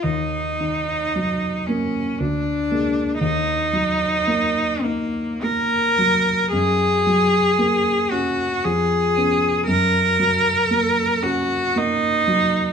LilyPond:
<<
  \new Staff \with { instrumentName = "Cello" } { \time 3/4 \key ees \minor \tempo 4 = 57 ees'4. des'8 d'4 | ees'4. bes8 bes'4 | aes'4. ges'8 aes'4 | bes'4. ges'8 ees'4 | }
  \new Staff \with { instrumentName = "Grand piano" } { \clef bass \time 3/4 \key ees \minor ees,8 ees8 ges8 bes8 d,8 <aes bes>8 | ees,8 ges8 bes8 ees'8 bes8 ges8 | ges,8 ges8 bes8 des'8 f,8 <ces' des'>8 | ges,8 ges8 bes8 des'8 bes8 ges8 | }
>>